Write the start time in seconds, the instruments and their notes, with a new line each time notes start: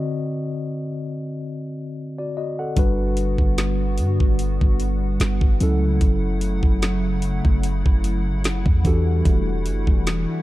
Already playing: tine electric piano D3 C4 F#4 D5 D#5
2.18 tine electric piano F#4 D5
2.37 tine electric piano F#4 D#5
2.59 tine electric piano A4 F#5
2.76 808-style bass G1, analog synth pad D3 G3 B3 F#4 F#5, tine electric piano G3 D4 F#4 B4, kick, closed hi-hat
3.17 closed hi-hat
3.38 808-style bass G1, kick
3.58 snare, closed hi-hat
3.98 808-style bass G2, closed hi-hat
4.20 808-style bass G1, kick
4.39 closed hi-hat
4.61 808-style bass G1, kick
4.80 closed hi-hat
5.20 808-style bass G1, snare, closed hi-hat
5.41 808-style bass G1, kick
5.60 808-style bass C#2, analog synth pad C#3 F#3 A3 E4, tine electric piano F#3 C#4 E4 A4, closed hi-hat
6.01 808-style bass F#1, kick, closed hi-hat
6.41 closed hi-hat
6.63 808-style bass F#1, kick
6.82 snare, closed hi-hat
7.22 closed hi-hat
7.45 808-style bass F#1, kick
7.63 closed hi-hat
7.86 808-style bass F#1, kick
8.04 closed hi-hat
8.26 808-style bass G1
8.44 808-style bass F#1, snare, closed hi-hat
8.66 808-style bass E2, kick
8.84 tine electric piano E3 D4 F#4 G4 A4, analog synth pad E3 G3 A3, kick, closed hi-hat
9.25 808-style bass E1, kick, closed hi-hat
9.66 808-style bass F#1, closed hi-hat
9.87 808-style bass E1, kick
10.07 snare, closed hi-hat